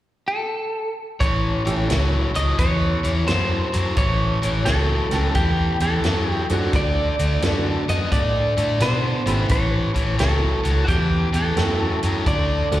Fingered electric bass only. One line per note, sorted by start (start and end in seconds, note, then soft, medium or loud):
1.21 1.55 A1 medium
1.67 1.84 A1 medium
1.91 2.25 C#2 medium
2.36 2.53 C#2 medium
2.59 2.93 E2 medium
3.05 3.22 E2 medium
3.29 3.63 F#2 medium
3.75 3.92 F#2 medium
3.97 4.31 A1 medium
4.44 4.61 A1 medium
4.66 5.01 C#2 medium
5.12 5.30 C#2 medium
5.35 5.69 E2 medium
5.80 5.98 E2 medium
6.04 6.39 F#2 medium
6.50 6.68 F#2 medium
6.74 7.08 D2 medium
7.20 7.37 D2 medium
7.43 7.77 F#2 medium
7.89 8.06 F#2 medium
8.12 8.46 A2 medium
8.58 8.75 A2 medium
8.81 9.15 B2 medium
9.26 9.44 G#1 medium
9.50 9.85 A1 medium
9.96 10.13 A1 medium
10.20 10.54 C#2 medium
10.65 10.83 C#2 medium
10.89 11.23 E2 medium
11.34 11.52 E2 medium
11.58 11.92 F#2 medium
12.03 12.21 F#2 medium
12.27 12.61 D2 medium
12.73 12.80 D2 medium